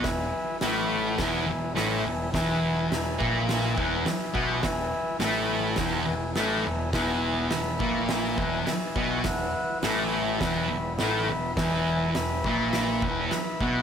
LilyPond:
<<
  \new Staff \with { instrumentName = "Transistor combo organ" } { \time 4/4 \key e \major \tempo 4 = 104 <b' e'' gis''>4 <b' e'' b''>4 <b' e'' gis''>4 <b' e'' gis''>4 | <b' e'' gis''>4 <b' e'' gis''>4 <b' e'' gis''>4 <b' e'' gis''>4 | <b' e'' gis''>4 <b' e'' gis''>4 <b' e'' gis''>4 <b' e'' gis''>4 | <b' e'' gis''>4 <b' e'' b''>4 <b' e'' gis''>4 <b' e'' gis''>4 |
<b' e'' fis''>4 <b' e'' gis''>4 <b' e'' b''>4 <b' e'' b''>4 | <b' e'' gis''>4 <b' e'' b''>4 <b' e'' b''>4 <b' e'' b''>4 | }
  \new Staff \with { instrumentName = "Distorted electric guitar" } { \clef bass \time 4/4 \key e \major e,8 r8 <a, a>4 <e, e>8 e,8 <a, a>8 e,8 | <e, e>4 e,8 <ais, ais>4 <e, e>8 r8 <b, b>8 | e,8 r8 <a, a>4 <e, e>8 e,8 <a, a>8 e,8 | <e, e>4 e,8 <ais, ais>4 <e, e>8 r8 <b, b>8 |
e,8 r8 <a, a>4 <e, e>8 e,8 <a, a>8 e,8 | <e, e>4 e,8 <ais, ais>4 <e, e>8 r8 <b, b>8 | }
  \new Staff \with { instrumentName = "Picked electric bass" } { \clef bass \time 4/4 \key e \major e,,8 r8 a,,4 e,,8 e,,8 a,,8 e,,8 | e,,4 e,,8 ais,,4 e,,8 r8 b,,8 | e,,8 r8 a,,4 e,,8 e,,8 a,,8 e,,8 | e,,4 e,,8 ais,,4 e,,8 r8 b,,8 |
r4 a,,4 e,,8 e,,8 a,,8 e,,8 | e,,4 e,,8 ais,,4 e,,8 r8 b,,8 | }
  \new DrumStaff \with { instrumentName = "Drums" } \drummode { \time 4/4 <hho bd sn>4 <hho sn>4 <hho bd sn>4 <hho sn>4 | <hho bd sn>4 <hho sn>8 bd8 <hho sn>8 bd8 <hho sn>8 bd8 | <hho bd sn>4 <hho sn>4 <hho bd sn>4 <hho sn>4 | <hho bd sn>4 <hho sn>8 bd8 <hho sn>8 bd8 <hho sn>8 bd8 |
<hho bd sn>4 <hho sn>4 <hho bd sn>4 <hho sn>4 | <hho bd sn>4 <hho sn>8 bd8 <hho sn>8 bd8 <hho sn>8 bd8 | }
>>